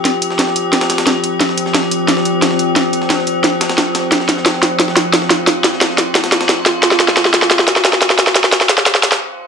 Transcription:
<<
  \new Staff \with { instrumentName = "Synth drone" } { \time 4/4 \key c \phrygian \tempo 4 = 177 << { g'1~ | g'1~ | g'1 | f'1~ |
f'1~ | f'1~ | f'1 | } \\ { <f c'>1~ | <f c'>1~ | <f c'>1~ | <f c'>1~ |
<f c'>1~ | <f c'>1~ | <f c'>1 | } >> }
  \new DrumStaff \with { instrumentName = "Drums" } \drummode { \time 4/4 <hh sn>8 hh16 sn16 <hh sn>16 sn16 hh8 <hh sn>16 <hh sn>16 <hh sn>16 <hh sn>16 <hh sn>8 hh8 | <hh sn>16 sn16 hh16 sn16 <hh sn>16 sn16 hh8 <hh sn>16 sn16 hh8 <hh sn>16 sn16 hh8 | <hh sn>8 hh16 sn16 <hh sn>16 sn16 hh8 <hh sn>8 <hh sn>16 <hh sn>16 <hh sn>8 <hh sn>8 | <hh sn>16 sn16 <hh sn>16 sn16 <hh sn>16 sn16 <hh sn>8 <hh sn>16 sn16 <hh sn>8 <hh sn>16 sn16 <hh sn>8 |
<hh sn>8 <hh sn>16 sn16 <hh sn>16 sn16 <hh sn>8 <hh sn>16 <hh sn>16 <hh sn>16 <hh sn>16 <hh sn>8 <hh sn>8 | <hh sn>16 sn16 <hh sn>16 sn16 <hh sn>16 sn16 <hh sn>16 sn16 <hh sn>16 sn16 <hh sn>16 sn16 <hh sn>16 sn16 <hh sn>16 sn16 | <hh sn>16 sn16 <hh sn>16 sn16 <hh sn>16 sn16 <hh sn>16 sn16 <hh sn>16 sn16 <hh sn>16 <hh sn>16 r4 | }
>>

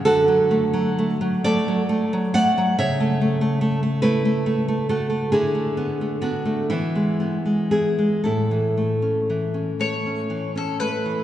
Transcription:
<<
  \new Staff \with { instrumentName = "Mandolin" } { \time 6/8 \key a \major \tempo 4. = 43 r2. | r2. | r2. | r4. cis''8. a'16 b'8 | }
  \new Staff \with { instrumentName = "Nylon-string guitar" } { \time 6/8 \key a \major << { <fis' a'>4. <a' d''>4 <d'' fis''>8 | <cis'' e''>4. <e' b'>4 <fis' a'>8 | <e' gis'>4 <d' fis'>8 <b e'>4 <e' gis'>8 | <e' a'>4. r4. | } \\ { d16 fis16 a16 fis16 a16 fis16 a16 fis16 a16 fis16 a16 fis16 | cis16 a16 a16 a16 a16 a16 a16 a16 a16 a16 a16 a16 | d16 a16 b16 a16 b16 a16 e16 gis16 b16 gis16 b16 gis16 | a,16 e16 a16 cis'16 e16 cis'16 a16 cis'16 e16 cis'16 a16 e16 | } >> }
>>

